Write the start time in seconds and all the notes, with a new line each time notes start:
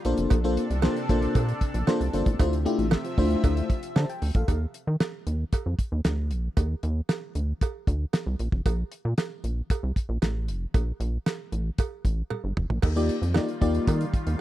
0.05 A#1 C3 A#3 D4 F4 A4 C5, closed hi-hat
0.18 F1, closed hi-hat
0.30 A#1, kick, closed hi-hat, cowbell
0.44 A#3 D4 F4 A4 C5, closed hi-hat
0.57 closed hi-hat
0.70 C2, closed hi-hat
0.82 A#3 D4 F4 A4 C5, snare, cowbell
0.97 closed hi-hat
1.09 A#1 A#3 D4 F4 A4 C5, kick, closed hi-hat
1.22 closed hi-hat
1.35 A#2, kick, closed hi-hat, cowbell
1.49 closed hi-hat
1.61 kick, closed hi-hat
1.74 A#1, closed hi-hat
1.87 A#3 D4 F4 A4 C5, snare, cowbell
2.01 C2, closed hi-hat
2.13 G1 A#3 D4 F4 A4 C5, closed hi-hat
2.26 A1, kick, closed hi-hat
2.39 D2 C3 F3 A3 D4 E4 F4 C5 E5, kick, closed hi-hat, cowbell
2.53 closed hi-hat
2.65 A3 D4 E4 F4 G4, closed hi-hat
2.79 A1, closed hi-hat
2.91 snare, cowbell
3.05 F4 C5, closed hi-hat
3.18 D2 A3 D4 E4 F4 C5, kick, open hi-hat
3.31 closed hi-hat
3.44 D2, kick, closed hi-hat, cowbell
3.57 closed hi-hat
3.70 kick, closed hi-hat
3.83 closed hi-hat
3.96 D3 C5 A5, snare, cowbell
4.10 G5, closed hi-hat
4.22 D2, open hi-hat
4.35 A#1 A4 F5, kick, closed hi-hat
4.48 D#2, kick, closed hi-hat, cowbell
4.74 closed hi-hat
4.87 D#3
5.00 snare, closed hi-hat, cowbell
5.27 D#2, closed hi-hat
5.53 kick, closed hi-hat, cowbell
5.66 F2
5.79 kick, closed hi-hat
5.92 D#2
6.05 D2, snare, closed hi-hat, cowbell
6.31 A#1, closed hi-hat
6.57 D#2, kick, closed hi-hat, cowbell
6.83 D#2, closed hi-hat
7.09 snare, closed hi-hat, cowbell
7.35 D2, closed hi-hat
7.61 kick, closed hi-hat, cowbell
7.87 D2, kick, closed hi-hat
8.13 snare, closed hi-hat, cowbell
8.27 C2
8.39 A#1, closed hi-hat
8.52 F1, kick
8.66 A#1, kick, closed hi-hat, cowbell
8.92 closed hi-hat
9.05 A#2
9.18 snare, closed hi-hat, cowbell
9.44 A#1, closed hi-hat
9.70 kick, closed hi-hat, cowbell
9.83 C2
9.96 kick, closed hi-hat
10.09 A#1
10.22 A1, snare, closed hi-hat, cowbell
10.48 F1, closed hi-hat
10.74 A#1, kick, closed hi-hat, cowbell
11.00 A#1, closed hi-hat
11.26 snare, closed hi-hat, cowbell
11.52 A1, closed hi-hat
11.78 kick, closed hi-hat, cowbell
12.05 A1, kick, closed hi-hat
12.30 high tom, cowbell
12.44 G1
12.57 F1, mid tom
12.70 A#1, floor tom
12.82 D#2 D#3 G3 F4, kick, crash, cowbell
12.96 A#3 D#4 F4 G4 D5, closed hi-hat
13.09 closed hi-hat
13.22 F2, closed hi-hat
13.34 A#3 D#4 F4 G4 D5, snare, cowbell
13.49 closed hi-hat
13.61 D#2 A#3 D#4 F4 G4 D5, kick, closed hi-hat
13.75 closed hi-hat
13.87 D#3, kick, closed hi-hat, cowbell
14.01 closed hi-hat
14.14 kick, closed hi-hat
14.27 D#2, closed hi-hat